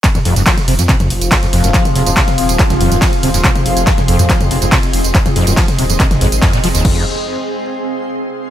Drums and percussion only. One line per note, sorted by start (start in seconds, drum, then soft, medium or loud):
0.04 kick loud
0.04 clap loud
0.04 closed hi-hat medium
0.04 ride medium
0.04 tambourine medium
0.15 closed hi-hat medium
0.15 mid tom medium
0.15 tambourine soft
0.25 closed hi-hat medium
0.25 open hi-hat loud
0.36 closed hi-hat soft
0.36 closed hi-hat medium
0.36 tambourine medium
0.46 kick loud
0.46 snare loud
0.46 clap loud
0.46 closed hi-hat medium
0.46 ride medium
0.46 tambourine soft
0.58 snare medium
0.58 closed hi-hat medium
0.58 mid tom medium
0.58 tambourine soft
0.68 closed hi-hat medium
0.68 open hi-hat loud
0.79 closed hi-hat medium
0.79 closed hi-hat soft
0.79 tambourine medium
0.89 kick loud
0.89 clap loud
0.89 closed hi-hat medium
0.89 ride medium
0.89 tambourine soft
1.00 closed hi-hat medium
1.00 mid tom medium
1.00 tambourine soft
1.10 closed hi-hat medium
1.10 open hi-hat loud
1.21 closed hi-hat medium
1.21 tambourine medium
1.32 kick loud
1.32 snare loud
1.32 clap loud
1.32 closed hi-hat medium
1.32 ride medium
1.32 tambourine medium
1.43 closed hi-hat medium
1.43 tambourine soft
1.53 closed hi-hat medium
1.53 open hi-hat medium
1.64 closed hi-hat medium
1.64 tambourine medium
1.74 kick loud
1.74 clap loud
1.74 closed hi-hat medium
1.74 ride medium
1.74 tambourine medium
1.85 closed hi-hat soft
1.85 closed hi-hat medium
1.85 mid tom medium
1.85 tambourine soft
1.96 closed hi-hat medium
1.96 open hi-hat loud
2.06 closed hi-hat medium
2.06 tambourine medium
2.17 kick loud
2.17 snare loud
2.17 clap loud
2.17 closed hi-hat medium
2.17 ride medium
2.28 snare soft
2.28 closed hi-hat medium
2.28 mid tom medium
2.28 tambourine soft
2.38 closed hi-hat medium
2.38 open hi-hat loud
2.49 closed hi-hat medium
2.49 tambourine medium
2.59 kick loud
2.59 clap loud
2.59 closed hi-hat medium
2.59 ride medium
2.70 snare medium
2.70 closed hi-hat medium
2.70 mid tom medium
2.70 tambourine soft
2.81 closed hi-hat medium
2.81 open hi-hat loud
2.92 closed hi-hat soft
2.92 closed hi-hat medium
2.92 tambourine medium
3.02 kick loud
3.02 snare loud
3.02 clap loud
3.02 closed hi-hat medium
3.02 ride medium
3.02 tambourine medium
3.13 closed hi-hat medium
3.13 tambourine soft
3.23 closed hi-hat medium
3.23 open hi-hat loud
3.34 snare medium
3.34 closed hi-hat medium
3.34 tambourine medium
3.44 kick loud
3.44 clap loud
3.44 closed hi-hat medium
3.44 ride medium
3.44 tambourine medium
3.56 closed hi-hat medium
3.56 mid tom medium
3.56 tambourine soft
3.66 closed hi-hat medium
3.66 open hi-hat loud
3.77 closed hi-hat medium
3.77 closed hi-hat soft
3.77 tambourine medium
3.87 kick loud
3.87 snare loud
3.87 clap loud
3.87 closed hi-hat medium
3.87 ride medium
3.87 tambourine medium
3.98 snare medium
3.98 closed hi-hat medium
3.98 mid tom medium
3.98 tambourine soft
4.08 closed hi-hat medium
4.08 open hi-hat loud
4.19 closed hi-hat medium
4.19 closed hi-hat soft
4.19 tambourine medium
4.30 kick loud
4.30 clap loud
4.30 closed hi-hat medium
4.30 ride medium
4.30 tambourine medium
4.41 closed hi-hat medium
4.41 mid tom loud
4.41 tambourine soft
4.51 closed hi-hat medium
4.51 open hi-hat loud
4.62 closed hi-hat medium
4.62 tambourine medium
4.72 kick loud
4.72 snare loud
4.72 clap loud
4.72 closed hi-hat medium
4.72 ride medium
4.72 tambourine medium
4.83 closed hi-hat medium
4.83 tambourine soft
4.93 closed hi-hat medium
4.93 open hi-hat loud
5.04 closed hi-hat medium
5.04 tambourine medium
5.15 kick loud
5.15 clap loud
5.15 closed hi-hat medium
5.15 ride medium
5.15 tambourine medium
5.26 closed hi-hat soft
5.26 closed hi-hat medium
5.26 mid tom medium
5.26 tambourine soft
5.36 closed hi-hat medium
5.36 open hi-hat loud
5.47 closed hi-hat medium
5.47 tambourine medium
5.57 kick loud
5.57 snare loud
5.57 clap loud
5.57 closed hi-hat loud
5.57 closed hi-hat medium
5.57 ride medium
5.57 tambourine medium
5.68 snare soft
5.68 closed hi-hat medium
5.68 mid tom medium
5.68 tambourine soft
5.79 closed hi-hat medium
5.79 open hi-hat loud
5.90 closed hi-hat medium
5.90 tambourine medium
6.00 kick loud
6.00 clap loud
6.00 closed hi-hat medium
6.00 ride medium
6.00 tambourine medium
6.11 snare medium
6.11 closed hi-hat medium
6.11 mid tom loud
6.11 tambourine soft
6.21 closed hi-hat medium
6.21 open hi-hat loud
6.32 closed hi-hat soft
6.32 closed hi-hat medium
6.32 tambourine medium
6.42 kick loud
6.42 snare loud
6.42 clap loud
6.42 closed hi-hat medium
6.42 ride medium
6.42 tambourine medium
6.53 closed hi-hat medium
6.53 tambourine soft
6.64 closed hi-hat medium
6.64 open hi-hat loud
6.75 snare medium
6.75 closed hi-hat medium
6.75 tambourine medium
6.85 kick loud
6.85 crash medium